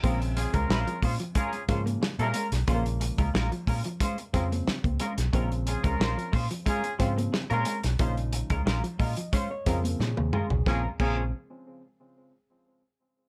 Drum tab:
CC |----------------|----------------|----------------|----------------|
HH |xxxx-xoxxxxx-xxx|xxxx-xoxxxxx-xxx|xxxx-xoxxxxx-xxx|xxxx-xoxx-xx----|
SD |----o-----o-o--o|----o-----o-o--o|----o-----o-o--o|----o-----o-o---|
T1 |----------------|----------------|----------------|-------------o--|
T2 |----------------|----------------|----------------|--------------o-|
FT |----------------|----------------|----------------|---------------o|
BD |o--o--o-o-o-----|o--o--o-o-o--o--|o--o--o-o-o-----|o--o--o-o-o-----|

CC |--x-------------|
HH |----------------|
SD |o---------------|
T1 |----------------|
T2 |----------------|
FT |----------------|
BD |o-o-------------|